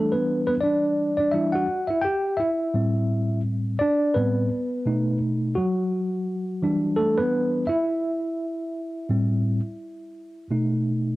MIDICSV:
0, 0, Header, 1, 2, 480
1, 0, Start_track
1, 0, Key_signature, 1, "minor"
1, 0, Tempo, 705882
1, 1868, Time_signature, 4, 2, 24, 8
1, 7589, End_track
2, 0, Start_track
2, 0, Title_t, "Tine electric piano"
2, 0, Program_c, 0, 4
2, 0, Note_on_c, 0, 52, 49
2, 0, Note_on_c, 0, 55, 42
2, 0, Note_on_c, 0, 57, 57
2, 0, Note_on_c, 0, 62, 52
2, 0, Note_on_c, 0, 69, 69
2, 77, Note_off_c, 0, 69, 0
2, 81, Note_on_c, 0, 71, 74
2, 85, Note_off_c, 0, 57, 0
2, 99, Note_on_c, 0, 59, 51
2, 309, Note_off_c, 0, 71, 0
2, 319, Note_off_c, 0, 59, 0
2, 319, Note_on_c, 0, 71, 79
2, 336, Note_on_c, 0, 59, 58
2, 365, Note_off_c, 0, 71, 0
2, 378, Note_off_c, 0, 59, 0
2, 412, Note_on_c, 0, 74, 86
2, 422, Note_off_c, 0, 62, 0
2, 431, Note_on_c, 0, 62, 64
2, 786, Note_off_c, 0, 62, 0
2, 788, Note_off_c, 0, 74, 0
2, 796, Note_on_c, 0, 74, 77
2, 816, Note_on_c, 0, 62, 55
2, 894, Note_on_c, 0, 76, 90
2, 898, Note_off_c, 0, 52, 0
2, 902, Note_off_c, 0, 55, 0
2, 904, Note_off_c, 0, 62, 0
2, 904, Note_off_c, 0, 74, 0
2, 906, Note_on_c, 0, 52, 43
2, 910, Note_on_c, 0, 55, 39
2, 912, Note_on_c, 0, 62, 50
2, 915, Note_on_c, 0, 64, 66
2, 1036, Note_on_c, 0, 78, 93
2, 1045, Note_off_c, 0, 64, 0
2, 1049, Note_off_c, 0, 76, 0
2, 1055, Note_on_c, 0, 66, 77
2, 1123, Note_off_c, 0, 52, 0
2, 1125, Note_off_c, 0, 55, 0
2, 1126, Note_off_c, 0, 62, 0
2, 1267, Note_off_c, 0, 78, 0
2, 1274, Note_on_c, 0, 76, 88
2, 1277, Note_off_c, 0, 66, 0
2, 1294, Note_on_c, 0, 64, 63
2, 1370, Note_on_c, 0, 79, 98
2, 1372, Note_off_c, 0, 76, 0
2, 1383, Note_off_c, 0, 64, 0
2, 1391, Note_on_c, 0, 67, 74
2, 1611, Note_on_c, 0, 76, 90
2, 1613, Note_off_c, 0, 67, 0
2, 1627, Note_off_c, 0, 79, 0
2, 1630, Note_on_c, 0, 64, 64
2, 1863, Note_on_c, 0, 45, 48
2, 1866, Note_on_c, 0, 55, 45
2, 1872, Note_on_c, 0, 60, 51
2, 2312, Note_off_c, 0, 76, 0
2, 2322, Note_off_c, 0, 64, 0
2, 2558, Note_off_c, 0, 45, 0
2, 2560, Note_off_c, 0, 55, 0
2, 2563, Note_off_c, 0, 60, 0
2, 2578, Note_on_c, 0, 74, 107
2, 2592, Note_on_c, 0, 62, 79
2, 2814, Note_off_c, 0, 62, 0
2, 2817, Note_on_c, 0, 71, 80
2, 2824, Note_on_c, 0, 45, 49
2, 2828, Note_on_c, 0, 55, 45
2, 2830, Note_off_c, 0, 74, 0
2, 2830, Note_on_c, 0, 60, 49
2, 2832, Note_on_c, 0, 59, 66
2, 3042, Note_off_c, 0, 45, 0
2, 3044, Note_off_c, 0, 55, 0
2, 3045, Note_off_c, 0, 60, 0
2, 3302, Note_on_c, 0, 47, 52
2, 3308, Note_on_c, 0, 57, 50
2, 3312, Note_on_c, 0, 63, 63
2, 3515, Note_off_c, 0, 71, 0
2, 3523, Note_off_c, 0, 59, 0
2, 3761, Note_off_c, 0, 47, 0
2, 3764, Note_off_c, 0, 57, 0
2, 3766, Note_off_c, 0, 63, 0
2, 3776, Note_on_c, 0, 66, 83
2, 3791, Note_on_c, 0, 54, 65
2, 4504, Note_on_c, 0, 52, 63
2, 4508, Note_on_c, 0, 55, 54
2, 4512, Note_on_c, 0, 62, 66
2, 4723, Note_off_c, 0, 54, 0
2, 4735, Note_on_c, 0, 69, 96
2, 4752, Note_on_c, 0, 57, 64
2, 4771, Note_off_c, 0, 66, 0
2, 4880, Note_on_c, 0, 71, 108
2, 4884, Note_off_c, 0, 57, 0
2, 4890, Note_off_c, 0, 69, 0
2, 4895, Note_on_c, 0, 59, 72
2, 5198, Note_off_c, 0, 71, 0
2, 5199, Note_off_c, 0, 52, 0
2, 5201, Note_off_c, 0, 55, 0
2, 5203, Note_off_c, 0, 62, 0
2, 5206, Note_off_c, 0, 59, 0
2, 5216, Note_on_c, 0, 76, 91
2, 5230, Note_on_c, 0, 64, 82
2, 6183, Note_on_c, 0, 45, 57
2, 6187, Note_on_c, 0, 55, 55
2, 6192, Note_on_c, 0, 60, 59
2, 6523, Note_off_c, 0, 45, 0
2, 6525, Note_off_c, 0, 55, 0
2, 6528, Note_off_c, 0, 60, 0
2, 7115, Note_off_c, 0, 76, 0
2, 7122, Note_off_c, 0, 64, 0
2, 7144, Note_on_c, 0, 47, 49
2, 7147, Note_on_c, 0, 57, 48
2, 7151, Note_on_c, 0, 63, 55
2, 7589, Note_off_c, 0, 47, 0
2, 7589, Note_off_c, 0, 57, 0
2, 7589, Note_off_c, 0, 63, 0
2, 7589, End_track
0, 0, End_of_file